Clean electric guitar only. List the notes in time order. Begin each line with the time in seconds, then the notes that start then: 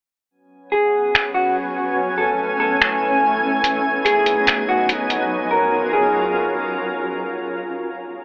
0.72 G#4
1.34 F#4
2.18 A4
2.60 A4
4.05 G#4
4.69 F#4
5.51 A#4
5.93 G#4